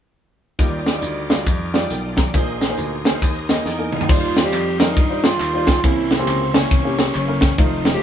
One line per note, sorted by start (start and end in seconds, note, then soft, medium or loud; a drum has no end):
0.59 0.96 D#2 medium
0.59 1.26 D#3 medium
0.59 0.86 G3 medium
0.59 2.31 G3 medium
0.59 0.86 D#4 medium
0.59 2.31 D#4 medium
0.59 0.86 F4 medium
0.59 2.31 F4 medium
0.59 0.87 D5 medium
0.59 2.31 D5 medium
0.59 kick loud
0.59 closed hi-hat medium
0.86 snare medium
0.86 closed hi-hat medium
0.94 1.17 G3 medium
0.94 1.17 D#4 medium
0.94 1.17 F4 medium
0.94 1.17 D5 medium
1.02 1.46 D2 medium
1.02 closed hi-hat medium
1.29 1.56 G3 medium
1.29 1.56 D#4 medium
1.29 1.56 F4 medium
1.29 1.56 F5 medium
1.29 snare loud
1.29 closed hi-hat medium
1.46 1.84 F2 medium
1.46 kick medium
1.46 closed hi-hat medium
1.73 1.90 G3 medium
1.73 1.91 D#4 medium
1.73 1.91 F4 medium
1.73 1.90 D5 medium
1.73 snare loud
1.73 closed hi-hat medium
1.90 2.28 B1 medium
1.90 2.17 A#4 medium
1.90 2.16 G5 medium
1.90 closed hi-hat medium
2.17 2.60 D5 medium
2.17 2.59 A#5 medium
2.17 kick medium
2.17 snare medium
2.17 closed hi-hat medium
2.34 2.71 A#1 medium
2.34 3.01 A#2 medium
2.34 2.61 A#3 medium
2.34 4.06 A#3 medium
2.34 2.62 D#4 medium
2.34 4.06 D#4 medium
2.34 2.62 G#4 medium
2.34 4.06 G#4 medium
2.34 2.62 C5 medium
2.34 3.63 C5 medium
2.34 kick loud
2.34 closed hi-hat medium
2.61 snare medium
2.61 closed hi-hat medium
2.69 2.92 A#3 medium
2.69 2.92 D#4 medium
2.69 2.92 G#4 medium
2.69 2.92 C5 medium
2.78 3.15 D2 medium
2.78 closed hi-hat medium
3.05 3.31 A#3 medium
3.05 3.31 D#4 medium
3.05 3.31 G#4 medium
3.05 3.31 C5 medium
3.05 3.21 F5 medium
3.05 snare loud
3.05 closed hi-hat medium
3.22 3.59 D#2 medium
3.22 3.48 D#5 medium
3.22 kick medium
3.22 closed hi-hat medium
3.49 3.66 A#3 medium
3.49 3.66 D#4 medium
3.49 3.66 G#4 medium
3.49 3.64 D#5 medium
3.49 3.66 D#5 medium
3.49 snare loud
3.49 closed hi-hat medium
3.65 4.03 E2 medium
3.65 4.11 D#4 medium
3.65 3.93 D5 medium
3.65 3.92 G5 medium
3.65 snare medium
3.78 4.01 A#3 medium
3.78 4.01 D#4 medium
3.78 4.01 G#4 medium
3.78 4.01 A#4 medium
3.92 4.09 C5 medium
3.92 4.35 F5 medium
3.92 4.09 G#5 medium
3.92 mid tom medium
4.01 floor tom medium
4.09 4.46 D#2 medium
4.09 4.76 D#3 medium
4.09 4.37 G3 medium
4.09 5.81 G3 medium
4.09 4.37 D#4 medium
4.09 5.81 D#4 medium
4.09 4.37 F4 medium
4.09 4.46 F4 loud
4.09 5.81 F4 medium
4.09 4.37 C5 medium
4.09 5.81 C5 medium
4.09 kick loud
4.09 crash medium
4.09 tambourine medium
4.36 snare loud
4.36 ride soft
4.36 tambourine soft
4.44 4.67 G3 medium
4.44 4.67 D#4 medium
4.44 4.67 F4 medium
4.44 4.81 G4 loud
4.44 4.67 C5 medium
4.53 4.97 F2 medium
4.53 clap medium
4.53 ride medium
4.53 tambourine medium
4.80 4.97 G3 medium
4.80 4.97 D#4 medium
4.80 5.25 D#4 loud
4.80 4.97 F4 medium
4.80 4.97 A#4 medium
4.80 snare loud
4.80 ride medium
4.80 tambourine medium
4.96 5.34 G2 medium
4.96 kick loud
4.96 ride medium
4.96 tambourine medium
5.10 5.38 G3 medium
5.10 5.38 D#4 medium
5.10 5.38 F4 medium
5.10 5.38 C5 medium
5.23 5.85 F4 loud
5.23 snare loud
5.23 ride medium
5.23 tambourine medium
5.40 5.77 D#2 medium
5.40 clap medium
5.40 ride medium
5.40 tambourine medium
5.53 5.76 G3 medium
5.53 5.76 D#4 medium
5.53 5.76 F4 medium
5.53 5.76 C5 medium
5.67 kick medium
5.67 snare loud
5.67 ride medium
5.67 tambourine soft
5.84 6.21 C2 loud
5.84 6.51 C3 medium
5.84 6.11 A#3 medium
5.84 7.55 A#3 medium
5.84 6.12 C#4 medium
5.84 6.18 E4 loud
5.84 6.12 E4 medium
5.84 7.55 E4 medium
5.84 7.55 C5 medium
5.84 6.12 C5 medium
5.84 7.55 C#5 medium
5.84 kick loud
5.84 ride medium
5.84 tambourine medium
6.11 snare medium
6.11 ride medium
6.11 tambourine medium
6.19 6.42 A#3 medium
6.19 6.56 C4 loud
6.19 6.42 C#4 medium
6.19 6.42 E4 medium
6.19 6.42 G4 medium
6.27 6.65 C#2 medium
6.27 clap medium
6.27 ride medium
6.27 tambourine medium
6.54 6.71 A#3 medium
6.54 6.71 C#4 medium
6.54 7.15 C#4 loud
6.54 6.71 E4 medium
6.54 6.72 C#5 medium
6.54 snare loud
6.54 ride medium
6.54 tambourine medium
6.71 7.08 C2 loud
6.71 kick loud
6.71 ride medium
6.71 tambourine medium
6.85 7.13 A#3 medium
6.85 7.13 C#4 medium
6.85 7.13 E4 medium
6.85 7.13 G4 medium
6.98 snare loud
6.98 ride medium
6.98 tambourine medium
7.14 7.52 F#1 loud
7.14 7.60 C#4 medium
7.14 clap medium
7.14 ride medium
7.14 tambourine loud
7.28 7.50 A#3 medium
7.28 7.50 C#4 medium
7.28 7.50 E4 medium
7.28 7.51 A#4 medium
7.41 kick medium
7.41 snare loud
7.41 ride medium
7.41 tambourine soft
7.58 7.96 F1 loud
7.58 7.86 A3 medium
7.58 8.03 A3 medium
7.58 7.86 D#4 medium
7.58 8.03 D#4 medium
7.58 7.94 D#4 loud
7.58 7.86 F4 medium
7.58 8.03 F4 medium
7.58 7.86 C5 medium
7.58 8.03 C5 medium
7.58 kick loud
7.58 ride medium
7.58 tambourine medium
7.85 snare loud
7.85 ride medium
7.85 tambourine medium
7.94 8.03 A3 medium
7.94 8.03 D#4 medium
7.94 8.03 F4 medium
7.94 8.03 G4 loud
7.94 8.03 C5 medium